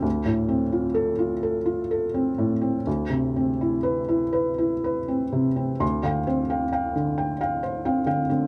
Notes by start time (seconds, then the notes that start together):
0.02 D2
0.25 A2
0.48 C4
0.72 F4
0.94 A4
1.19 F4
1.43 A4
1.66 F4
1.91 A4
2.14 C4
2.38 A2
2.61 C4
2.87 D2
3.10 C3
3.36 C4
3.61 E4
3.83 B4
4.08 E4
4.33 B4
4.58 E4
4.84 B4
5.08 C4
5.32 C3
5.56 C4
5.80 D2 C6
6.03 D3 F5 G5
6.27 C4 C5
6.50 F5 G5
6.73 F5 G5
6.96 D3
7.18 G5
7.41 F5 G5
7.63 C5
7.85 C4 F5 G5
8.06 D3 F5 G5
8.30 D3 C4